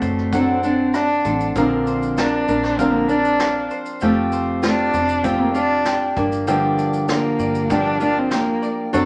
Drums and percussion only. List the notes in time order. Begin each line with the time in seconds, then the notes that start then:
0.02 kick, shaker
0.18 cross-stick
0.33 kick, shaker
0.63 shaker
0.94 cross-stick, shaker
1.25 kick, shaker
1.40 shaker
1.56 kick, shaker
1.87 shaker
2.03 shaker
2.17 snare, shaker
2.48 shaker
2.64 snare
2.79 kick, shaker
3.09 shaker
3.25 shaker
3.40 snare, shaker
3.71 shaker
3.86 shaker
4.00 shaker
4.32 shaker
4.63 snare, shaker
4.94 shaker
5.09 shaker
5.24 kick, shaker
5.55 shaker
5.85 snare, shaker
6.17 kick, shaker
6.32 shaker
6.47 shaker
6.78 shaker
6.93 shaker
7.08 snare, shaker
7.39 shaker
7.55 shaker
7.70 kick, shaker
8.00 shaker
8.31 snare, shaker
8.63 shaker
8.93 shaker